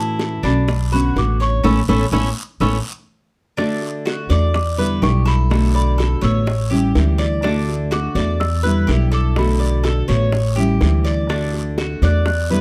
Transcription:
Already playing: upright bass A2, nylon-string guitar E3 A3 C#4 F#4, cuban tres E4, celesta A5
0.19 high bongo, short guiro
0.43 upright bass B1, nylon-string guitar A3 C#4 F#4, cuban tres D4, celesta B5, high bongo, short guiro
0.68 muted nylon-string guitar stroke, high bongo, long guiro
0.92 nylon-string guitar D3 B3 C#4 F#4, cuban tres F#4, celesta B5, high bongo
1.16 upright bass A1, nylon-string guitar D3 B3 C#4 F#4, celesta D6, high bongo, low bongo, short guiro
1.40 cuban tres C#5, celesta C#6, high bongo, short guiro
1.64 upright bass A1, nylon-string guitar A3 B3 C#4, cuban tres C#4 E4 A4, celesta B5 C#6 E6, low bongo, long guiro
1.88 upright bass A1, nylon-string guitar A3 B3 C#4, cuban tres C#4 E4 A4, celesta B5 C#6 E6, low bongo, long guiro
2.12 upright bass A1, nylon-string guitar A3 B3 C#4, cuban tres C#4 E4 A4, celesta B5 C#6 E6, low bongo, long guiro
2.60 upright bass A1, nylon-string guitar A3 B3 C#4, cuban tres C#4 E4 A4, celesta B5 C#6 E6, low bongo, long guiro
3.57 nylon-string guitar D3 A3 D4 F#4, cuban tres D4, high bongo, long guiro
3.82 high bongo
4.05 cuban tres F#4, high bongo, short guiro
4.29 upright bass E2, nylon-string guitar A3 D4 F#4, cuban tres D5, celesta D6, short guiro
4.54 celesta D6, muted nylon-string guitar stroke, high bongo, long guiro
4.78 nylon-string guitar D3 G3 B3 E4, cuban tres B4, high bongo
5.02 upright bass B1, nylon-string guitar D3 G3 B3 E4, cuban tres G4, celesta C#6, high bongo, low bongo, short guiro
5.25 cuban tres A4, celesta B5, high bongo, short guiro
5.50 nylon-string guitar B2 D3 A3 B3 F#4, high bongo, long guiro
5.74 cuban tres D5, celesta B5, high bongo
5.98 cuban tres A4, high bongo, short guiro
6.21 upright bass A1, nylon-string guitar D3 A3 B3 F#4, cuban tres C#5, celesta E6, short guiro
6.46 muted nylon-string guitar stroke, high bongo, long guiro
6.70 nylon-string guitar G3 C#4 E4, cuban tres G4, high bongo
6.95 upright bass D2, nylon-string guitar E3 G3 C#4 E4, high bongo, low bongo, short guiro
7.18 cuban tres D5, high bongo, short guiro
7.42 nylon-string guitar D3 A3 D4 F#4, cuban tres D4, high bongo, long guiro
7.69 high bongo
7.91 cuban tres F#4, celesta D6, high bongo, short guiro
8.15 upright bass E2, nylon-string guitar A3 D4 F#4, cuban tres D5, short guiro
8.40 celesta E6, muted nylon-string guitar stroke, high bongo, long guiro
8.63 nylon-string guitar D3 G3 B3 E4, cuban tres B4, high bongo
8.87 upright bass B1, nylon-string guitar D3 G3 B3 E4, cuban tres G4, high bongo, low bongo, short guiro
9.12 cuban tres A4, celesta D6, high bongo, short guiro
9.36 nylon-string guitar B2 D3 A3 B3 F#4, celesta B5, high bongo, long guiro
9.59 cuban tres D5, high bongo
9.84 cuban tres A4, high bongo, short guiro
10.08 upright bass A1, nylon-string guitar D3 A3 B3 F#4, cuban tres C#5, short guiro
10.32 muted nylon-string guitar stroke, high bongo, long guiro
10.56 nylon-string guitar G3 C#4 E4, cuban tres G4, high bongo
10.81 upright bass D2, nylon-string guitar E3 G3 C#4 E4, high bongo, low bongo, short guiro
11.05 cuban tres D5, high bongo, short guiro
11.29 nylon-string guitar D3 A3 D4 F#4, cuban tres D4, high bongo, long guiro
11.54 high bongo
11.78 cuban tres F#4, high bongo, short guiro
12.02 upright bass E2, nylon-string guitar A3 D4 F#4, cuban tres D5, celesta F#6, short guiro
12.26 celesta F#6, muted nylon-string guitar stroke, high bongo, long guiro
12.50 nylon-string guitar D3 G3 B3 E4, cuban tres B4, high bongo

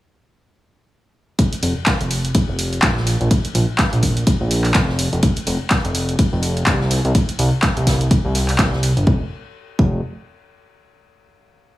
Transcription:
1.39 kick, closed hi-hat, ride
1.53 closed hi-hat, ride
1.63 analog synth bass F1, open hi-hat, ride
1.86 kick, snare, clap, closed hi-hat, ride
2.01 analog synth bass F1, closed hi-hat
2.11 open hi-hat, ride
2.25 closed hi-hat
2.34 kick, closed hi-hat, ride
2.49 analog synth bass F1
2.59 open hi-hat, ride
2.73 closed hi-hat, ride
2.82 analog synth bass A#1, kick, snare, clap, closed hi-hat, ride
2.97 snare
3.07 snare, open hi-hat, ride
3.21 analog synth bass A#1, closed hi-hat
3.31 kick, closed hi-hat, ride
3.45 closed hi-hat
3.55 analog synth bass A#1, open hi-hat, ride
3.78 kick, snare, clap, closed hi-hat, ride
3.93 analog synth bass A#1, closed hi-hat
4.03 kick, open hi-hat, ride
4.17 closed hi-hat, ride
4.27 kick, closed hi-hat, ride
4.41 analog synth bass A#1
4.50 snare, open hi-hat, ride
4.64 clap, open hi-hat
4.74 analog synth bass F1, kick, snare, clap, closed hi-hat, ride
4.89 snare
4.99 open hi-hat, ride
5.13 analog synth bass F1, closed hi-hat
5.22 kick, closed hi-hat, ride
5.36 closed hi-hat, ride
5.47 analog synth bass F1, open hi-hat, ride
5.70 kick, snare, clap, closed hi-hat, ride
5.85 analog synth bass F1, closed hi-hat
5.95 open hi-hat, ride
6.09 closed hi-hat
6.19 kick, closed hi-hat, ride
6.33 analog synth bass F1
6.42 open hi-hat, ride
6.57 closed hi-hat, ride
6.66 analog synth bass C2, kick, snare, clap, closed hi-hat, ride
6.81 snare
6.90 snare, open hi-hat, ride
7.05 analog synth bass C2, closed hi-hat
7.15 kick, closed hi-hat, ride
7.29 closed hi-hat
7.39 analog synth bass C2, open hi-hat, ride
7.62 kick, snare, clap, closed hi-hat, ride
7.77 analog synth bass C2, closed hi-hat
7.87 kick, snare, open hi-hat, ride
8.01 closed hi-hat
8.11 kick, closed hi-hat, ride
8.25 analog synth bass C2
8.35 snare, open hi-hat, ride
8.48 clap, open hi-hat
8.59 analog synth bass C2, kick, snare, clap, closed hi-hat, ride
8.73 snare
8.83 open hi-hat, ride
8.97 analog synth bass G1, closed hi-hat
9.07 analog synth bass F1, kick
9.79 analog synth bass F1, kick

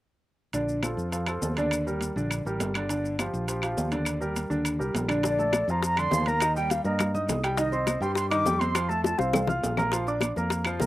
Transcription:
0.53 fingered electric bass A#1, grand piano D3 D4 D5, high conga, high timbale, maracas
0.68 high conga, maracas
0.83 grand piano F3 F4 A4, high conga, high timbale, low timbale, claves, maracas
0.97 fingered electric bass F2, high conga, maracas
1.12 grand piano F3 F4 A4, high conga, high timbale, maracas
1.26 grand piano F3 F4 A4, high conga, high timbale, claves, maracas
1.42 fingered electric bass D#2, high conga, low timbale, maracas
1.57 grand piano D3 D4 D5, high conga, high timbale, maracas
1.71 high conga, high timbale, claves, maracas
1.87 grand piano G3 G4 A#4, high conga, maracas
2.01 high conga, high timbale, low timbale, maracas
2.16 fingered electric bass A#1, grand piano D3 D4 D5, high conga, maracas
2.31 high conga, high timbale, claves, maracas
2.45 fingered electric bass A1, grand piano G3 G4 A#4, high conga, maracas
2.60 fingered electric bass G1, high conga, high timbale, low timbale, maracas
2.74 grand piano D3 D4 D5, high timbale, claves, maracas
2.89 grand piano D3 D4 D5, high conga, high timbale, maracas
3.04 high conga, maracas
3.19 grand piano F3 F4 G4, high conga, high timbale, low timbale, claves, maracas
3.34 fingered electric bass A#1, high conga, maracas
3.48 grand piano F3 F4 G4, high conga, high timbale, maracas
3.62 grand piano F3 F4 G4, high conga, high timbale, claves, maracas
3.77 fingered electric bass D#2, high conga, low timbale, maracas
3.92 grand piano D3 D4 D5, high conga, high timbale, maracas
4.05 high conga, high timbale, claves, maracas
4.20 grand piano G3 G4 A#4, high conga, maracas
4.36 high conga, high timbale, low timbale, maracas
4.50 fingered electric bass D#2, grand piano D3 D4 D5, high conga, maracas
4.65 high conga, high timbale, claves, maracas
4.79 fingered electric bass C2, grand piano G3 G4 A#4, high conga, maracas
4.94 fingered electric bass A#1, high conga, high timbale, low timbale, maracas
5.08 grand piano D3 D4 D5, high timbale, claves, maracas
5.23 grand piano D3 D4 D5, high bongo, high conga, high timbale, maracas
5.28 flute D5
5.39 grand piano A3 A4 A5, high bongo, high conga, maracas
5.53 high bongo, high conga, high timbale, low timbale, claves, maracas
5.68 fingered electric bass F2, grand piano F3 F4 F5, flute A#5, high bongo, high conga, maracas
5.83 flute A#5, high bongo, high conga, high timbale, maracas
5.96 grand piano D3 D4 D5, flute C6, high bongo, high conga, high timbale, claves, maracas
6.11 fingered electric bass D#2, grand piano F3 F4 F5, high bongo, low bongo, high conga, low timbale, maracas
6.26 grand piano A#3 A#4 A#5, flute A#5, high conga, high timbale, maracas
6.40 grand piano D#3 D#4 D#5, high bongo, high conga, high timbale, claves, maracas
6.56 grand piano G3 G4 G5, flute G5, high bongo, high conga, maracas
6.70 flute F5, high bongo, high conga, high timbale, low timbale, maracas
6.84 fingered electric bass G2, grand piano A#3 A#4 A#5, flute D#5, high bongo, maracas
6.99 high bongo, high conga, low conga, high timbale, claves, maracas
7.14 grand piano D#4 D#5 D#6, high bongo, high conga, low conga, maracas
7.28 fingered electric bass C2, high bongo, low bongo, high conga, high timbale, low timbale, maracas
7.44 grand piano G3 G4 G5, high conga, high timbale, claves, maracas
7.57 grand piano D#3 D#4 D#5, flute D#5, high bongo, high conga, high timbale, maracas
7.72 grand piano C4 C5 C6, high bongo, high conga, maracas
7.87 high bongo, high conga, high timbale, low timbale, claves, maracas
8.01 fingered electric bass G2, grand piano G3 G4 G5, flute C6, high bongo, high conga, maracas
8.15 flute C6, high bongo, high conga, high timbale, maracas
8.30 grand piano D#3 D#4 D#5, flute D6, high bongo, high conga, high timbale, claves, maracas
8.45 fingered electric bass F2, grand piano G3 G4 G5, high bongo, low bongo, high conga, low timbale, maracas
8.59 grand piano C4 C5 C6, flute C6, high conga, high timbale, maracas
8.75 grand piano F3 F4 F5, high bongo, high conga, high timbale, claves, maracas
8.89 grand piano A3 A4 A5, flute A5, high bongo, high conga, maracas
9.04 flute A5, high bongo, high conga, high timbale, maracas
9.18 fingered electric bass C2, grand piano C4 C5 C6, flute F5, high bongo, high conga, maracas
9.33 low bongo, high conga, low conga, low timbale, claves, maracas
9.47 grand piano F4 F5 F6, low bongo, high conga, low conga, maracas
9.63 fingered electric bass A#1, high conga, low timbale, maracas
9.77 grand piano A#3 A#4 A#5, low bongo, low timbale, claves, maracas
9.92 grand piano F3 F4 F5, high bongo, high conga, high timbale, maracas
10.07 grand piano D4 D5 D6, high bongo, high conga, maracas
10.21 high bongo, high conga, high timbale, low timbale, claves, maracas
10.36 fingered electric bass F2, grand piano A#3 A#4 A#5, high bongo, high conga, maracas
10.50 high bongo, high conga, high timbale, maracas
10.65 grand piano F3 F4 F5, high bongo, high conga, high timbale, claves, maracas
10.80 fingered electric bass C2, grand piano A#3 A#4 A#5, high bongo, low bongo, high conga, low timbale, maracas

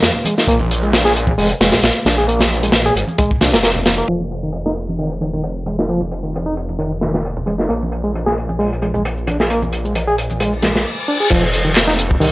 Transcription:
0.03 detuned saw bass F2, snare, closed hi-hat, shaker
0.15 low conga, shaker
0.25 reed electric piano G#3, closed hi-hat, high conga
0.38 reed electric piano D#4, snare, shaker
0.47 detuned saw bass A#1, reed electric piano A#3, kick, closed hi-hat, shaker
0.60 high conga, low conga, shaker
0.71 closed hi-hat
0.83 reed electric piano G#3, shaker
0.92 snare, closed hi-hat, high conga, shaker
1.05 reed electric piano G#4, snare, shaker
1.16 closed hi-hat
1.27 kick, high conga, shaker
1.38 detuned saw bass F1, reed electric piano G#3, open hi-hat, shaker
1.49 closed hi-hat, shaker
1.60 detuned saw bass F1, reed electric piano G#3, snare, closed hi-hat, high conga
1.72 detuned saw bass A#1, reed electric piano G#3, snare, closed hi-hat, low conga, shaker
1.83 detuned saw bass A#1, snare, closed hi-hat, shaker
1.95 shaker
2.05 detuned saw bass A#1, reed electric piano D4, snare, closed hi-hat, high conga
2.18 reed electric piano G#4, shaker
2.28 reed electric piano A#3, closed hi-hat, shaker
2.40 snare, closed hi-hat, high conga, low conga, shaker
2.63 reed electric piano G#3, closed hi-hat, shaker
2.72 snare, closed hi-hat, high conga, shaker
2.86 reed electric piano G#4, shaker
2.96 detuned saw bass G#1, closed hi-hat
3.07 high conga, shaker
3.18 reed electric piano G#3, kick, closed hi-hat, shaker
3.31 kick, shaker
3.41 detuned saw bass C2, reed electric piano D4, snare, closed hi-hat, high conga, low conga
3.53 detuned saw bass F1, reed electric piano A#3, snare, closed hi-hat, shaker
3.63 reed electric piano A#3, snare, closed hi-hat, shaker
3.75 low conga, shaker
3.86 reed electric piano A#3, snare, closed hi-hat, high conga
3.98 reed electric piano A#3, shaker
4.08 detuned saw bass F1, reed electric piano F3, closed hi-hat
4.21 high conga
4.32 closed hi-hat
4.43 reed electric piano D#3, shaker
4.53 closed hi-hat, high conga, shaker
4.66 reed electric piano D#4, snare, shaker
4.76 closed hi-hat
4.88 muted conga, high conga, shaker
4.98 reed electric piano D#3, open hi-hat, shaker
5.11 closed hi-hat, shaker
5.21 reed electric piano D#3, closed hi-hat, high conga
5.33 reed electric piano D#3, low conga, shaker
5.43 closed hi-hat, muted conga, shaker
5.57 shaker
5.66 reed electric piano G#3, closed hi-hat, high conga
5.79 reed electric piano D#4, snare, shaker
5.88 reed electric piano F3, closed hi-hat, shaker
6.01 high conga, low conga, shaker
6.11 closed hi-hat
6.23 reed electric piano D#3, shaker
6.34 closed hi-hat, high conga, shaker
6.46 reed electric piano D#4, shaker
6.57 closed hi-hat
6.69 muted conga, high conga, shaker
6.79 reed electric piano D#3, closed hi-hat, shaker
6.92 shaker
7.01 reed electric piano D#3, snare, closed hi-hat, high conga, low conga
7.14 reed electric piano D#3, snare, shaker
7.25 closed hi-hat, shaker
7.37 low conga, shaker
7.46 reed electric piano G#3, closed hi-hat, high conga
7.58 reed electric piano D#4, snare, shaker
7.69 detuned saw bass A#1, reed electric piano A#3, closed hi-hat, shaker
7.82 high conga, shaker
7.92 closed hi-hat
8.04 reed electric piano G#3, shaker
8.13 closed hi-hat, high conga, shaker
8.26 reed electric piano G#4, snare, shaker
8.38 closed hi-hat
8.49 muted conga, high conga, shaker
8.59 reed electric piano G#3, open hi-hat, shaker
8.72 closed hi-hat, shaker
8.82 reed electric piano G#3, closed hi-hat, high conga
8.94 reed electric piano G#3, low conga, shaker
9.05 closed hi-hat, muted conga, shaker
9.17 shaker
9.27 reed electric piano D4, closed hi-hat, high conga
9.40 reed electric piano G#4, snare, shaker
9.50 reed electric piano A#3, closed hi-hat, shaker
9.62 high conga, low conga, shaker
9.72 closed hi-hat
9.85 reed electric piano G#3, shaker
9.95 closed hi-hat, high conga, shaker
10.07 reed electric piano G#4, shaker
10.18 closed hi-hat
10.30 muted conga, high conga, shaker
10.40 reed electric piano G#3, closed hi-hat, reverse cymbal, shaker
10.53 shaker
10.62 reed electric piano G#3, snare, closed hi-hat, high conga, low conga
10.75 reed electric piano G#3, snare, shaker
11.08 reed electric piano D4
11.20 reed electric piano G#4
11.30 detuned saw bass F1, reed electric piano F3, kick, closed hi-hat, crash, shaker
11.43 shaker
11.53 closed hi-hat
11.65 reed electric piano D#3, shaker
11.76 snare, clap, closed hi-hat, shaker
11.88 reed electric piano D#4, snare, shaker
11.99 closed hi-hat
12.11 kick, shaker
12.20 detuned saw bass C2, reed electric piano D#3, open hi-hat, shaker

